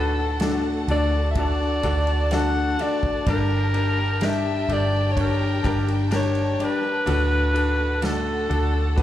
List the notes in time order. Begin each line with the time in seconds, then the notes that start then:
Already playing: D2 A2 D4 F#4 A4 B4 F#5 A5
0.17 D4 F#4 A4
0.40 D3 A3 D4 F#4 A4, snare, ride
0.88 D2 A3 D4 F#4 A4 D5, ride
1.13 D4 F#4 A4
1.31 E5
1.35 D4 F#4 A4, kick, ride
1.40 D5
1.59 D4 F#4 A4
1.83 D2 A3 D4 F#4 A4, kick, ride
2.07 D4 F#4 A4, ride
2.31 D3 A3 D4 F#4 A4 F#5, snare, ride
2.78 A3 D4 F#4 A4 D5, ride
3.03 kick
3.26 G1 G2 D3 G3 D4 G4 A#4 G5, kick, ride
3.30 A#4
3.48 D4 G4 A#4
3.74 D4 G4 A#4, ride
3.97 D4 G4 A#4
4.21 G3 D4 G4 A#4 E5, snare, ride
4.69 G1 G3 D4 G4 A4 A#4, ride
4.73 D5
4.91 D4 G4 A#4
5.12 C#5
5.16 D4 G4 C#5, kick, ride
5.21 A#4
5.40 D4 G4 A#4
5.63 G1 G3 D4 G4 A#4, kick, ride
5.87 D4 G4 A#4, ride
6.11 G3 D4 G4 A#4, snare, ride
6.16 C#5
6.35 ride
6.58 G3 D4 G4 A#4 D5, ride
6.64 B4
6.81 D4 G4 A#4
7.05 D2 A2 D3 A3 D4 F#4 A4 F#5, ride
7.29 D4 F#4 A4
7.53 D4 F#4 A4, ride
7.77 D4 F#4 A4
8.02 D3 A3 D4 F#4 A4, snare, ride
8.49 D2 A3 D4 F#4 A4, ride
8.72 D4 F#4 A4
8.96 D4 F#4 B4, kick, ride